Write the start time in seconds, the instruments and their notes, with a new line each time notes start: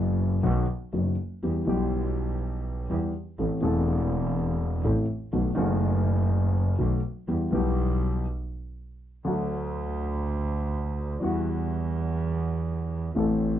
Already playing: grand piano F#1 F#2 E3 F#3 B3 F#4, double bass F#1
0.43 grand piano B1 B2 D#3 F#3 B3 F#4, double bass B1
0.93 grand piano F#1 F#2 D#3 F#3 B3 F#4, double bass F#1
1.43 grand piano E2 E3 G3 B3 G4, double bass E2
1.65 grand piano B1 B2 E3 G3 B3, double bass B1
1.69 grand piano G4
2.90 grand piano E2 E3 G3 B3 G4, double bass E2
3.39 double bass A1, grand piano A1 A2 E3 A3 C4 A4
3.61 grand piano E1 E2 E3 A3 C4, double bass E1
3.65 grand piano A4
4.84 grand piano A1 A2 E3 A3 C4 A4, double bass A1
5.33 grand piano B1 B2 D#3 A3 B3 F#4, double bass B1
5.55 double bass F#1, grand piano F#1 F#2 D#3 A3 B3
5.59 grand piano F#4
6.78 double bass B1, grand piano B1 B2 D#3 A3 B3 F#4
7.28 double bass E2, grand piano E2 E3 G3 B3 G4
7.51 double bass B1, grand piano B1 B2 E3 G3 B3 G4
9.25 double bass D2, grand piano D2 D3 F#3 A3 F#4
11.20 double bass E2, grand piano E2 E3 G3 B3 F#4
13.14 grand piano A1 A2 E3 A3 C4 A4, double bass A1